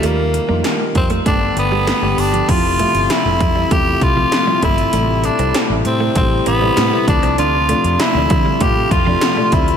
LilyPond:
<<
  \new Staff \with { instrumentName = "Tenor saxophone" } { \time 4/4 \key f \lydian \tempo 4 = 98 bes4 r8 c'8 d'8 b4 d'8 | f'4 e'4 g'8 f'4 e'8~ | e'8 d'8 r8 c'8 c'8 b4 d'8 | f'4 e'4 g'8 f'4 e'8 | }
  \new Staff \with { instrumentName = "Clean electric guitar" } { \time 4/4 \key f \lydian a16 r8 bes16 bes16 r8 a16 a16 r8 g16 a16 r8 f16 | f16 r16 a16 r8. f16 g16 a16 r8 f16 r16 g16 a16 r16 | a16 r8 c'16 c'16 r8 a16 r8 c'16 g16 a16 r8 c'16 | d'16 r16 a16 r8. f16 g16 a16 r8 f16 r16 a16 c'16 r16 | }
  \new Staff \with { instrumentName = "Grand piano" } { \time 4/4 \key f \lydian <ees g bes f'>8 r16 <ees g bes f'>4~ <ees g bes f'>16 <d g b g'>8 <d g b g'>8. <d g b g'>8. | <c f a e'>8 <c f a e''>8. <c f a e'>8. <c a e' f'>8. <c f a e'>8 <c f a e'>8. | <c g a e'>8 <c g a e'>8. <c g a e'>8. <c g a e'>8. <c g a e'>8 <c g a e'>16 <c f a d'>8~ | <c f a d'>16 r16 <c f a d'>8. <c f a d'>8. <c f a f'>8. <c f a d'>8 <c f a d'>8. | }
  \new Staff \with { instrumentName = "Fingered electric bass" } { \clef bass \time 4/4 \key f \lydian ees,8. f,16 r8 f,8 g,,8 g,,8. g,,16 g,,8 | f,,8. g,,16 r16 f,,16 f,8 e,8 c,8 r8 g,,8 | a,,8. c,16 r16 a,,16 a,8 a,,8 a,,8 a,16 r16 d,16 c,16 | d,8. f,16 r16 d,16 d8 a,8 f,8 r8 d,8 | }
  \new DrumStaff \with { instrumentName = "Drums" } \drummode { \time 4/4 hh8 hh8 <hh sn>8 <hh bd>16 hh16 <hh bd>8 hh8 <hh sn>8 hho16 hh16 | <cymc hh bd>8 hh16 hh16 <hh sn>8 <hh bd>8 <hh bd>8 <hh bd>8 <hh sn>8 <hh bd>16 hh16 | hh8 hh16 hh16 <hh sn>8 hh8 <hh bd>8 hh8 <hh sn>8 <hh bd>16 hh16 | hh8 hh16 hh16 <hh sn>8 <hh bd>8 <hh bd>8 <hh bd>8 <hh sn>8 <hh bd>16 hh16 | }
>>